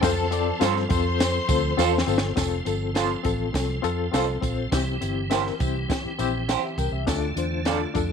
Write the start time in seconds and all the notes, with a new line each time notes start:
Already playing: C4
0.01 F2 F3 C4 F4 A4 C5 A5, kick, snare, closed hi-hat, tambourine
0.31 C4 F4 A4 D5, closed hi-hat, tambourine
0.60 G2 C4 F4 A4 C5, snare, closed hi-hat, tambourine
0.76 snare
0.89 F2 C4 F4 A4 C5 C6, kick, closed hi-hat, tambourine
1.20 snare, closed hi-hat, tambourine
1.48 D2 C4 F4 A4 C5, kick, closed hi-hat, tambourine
1.77 E2 C4 F4 A4 C5, snare, tambourine
1.98 snare
2.07 G1 C4 F4 A4 C5, tambourine
2.18 snare
2.36 F1 F3 C4 F4 A4, kick, snare, closed hi-hat, tambourine
2.65 G1 C4 F4 A4, closed hi-hat, tambourine
2.94 C4 F4 A4 C5, snare, closed hi-hat, tambourine
3.24 A1 C4 F4 A4, kick, closed hi-hat, tambourine
3.53 C2 C4 F4 A4, kick, snare, closed hi-hat, tambourine
3.82 F2 C4 F4 A4, closed hi-hat, tambourine
4.12 C2 C4 F4 A4 C5, snare, closed hi-hat, tambourine
4.42 A#1 C4 F4 C5, kick, closed hi-hat, tambourine
4.72 C2 E3 C4 E4 G4, kick, snare, closed hi-hat, tambourine
5.01 G1 C4 E4 G4, closed hi-hat, tambourine
5.30 C4 E4 G4 A#4 C5, snare, closed hi-hat, tambourine
5.47 snare
5.60 C2 C4 E4 G4, kick, closed hi-hat, tambourine
5.89 C4 E4 G4, kick, snare, closed hi-hat, tambourine
6.05 muted fingered electric bass stroke
6.18 A#1 C4 E4 G4, closed hi-hat, tambourine
6.49 E4 G4 C5 E5, snare, closed hi-hat, tambourine
6.77 C2 A#4 G5, kick, closed hi-hat, tambourine
6.92 C2 G4 E5
7.07 D2 D3 A3 D4 F4 A4, kick, snare, closed hi-hat, tambourine
7.36 E2 D4 F4 C5, closed hi-hat, tambourine
7.65 D4 F4 A4 D5, snare, closed hi-hat, tambourine
7.94 F2 D4 F4 A4, kick, closed hi-hat, tambourine